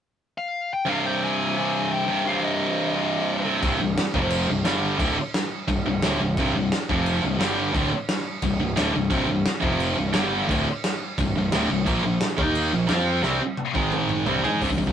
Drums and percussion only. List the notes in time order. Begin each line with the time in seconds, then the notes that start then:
3.63 kick, crash
3.97 snare, crash
4.14 kick
4.30 crash
4.65 snare, crash
4.99 kick, crash
5.34 snare, crash
5.68 kick, crash
6.02 snare, crash
6.37 kick, crash
6.72 snare, crash
6.89 kick
7.06 crash
7.41 snare, crash
7.75 kick, crash
8.09 snare, crash
8.42 kick, crash
8.77 snare, crash
9.11 kick, crash
9.45 snare, crash
9.62 kick
9.80 crash
10.14 snare, crash
10.49 kick, crash
10.84 snare, crash
11.18 kick, crash
11.52 snare, crash
11.87 kick, crash
12.21 snare, crash
12.38 kick
12.55 crash
12.89 snare, crash
13.23 snare
13.57 high tom
13.75 kick
13.92 mid tom
14.09 mid tom
14.26 floor tom
14.45 floor tom
14.62 kick, open hi-hat
14.70 kick
14.79 kick
14.87 kick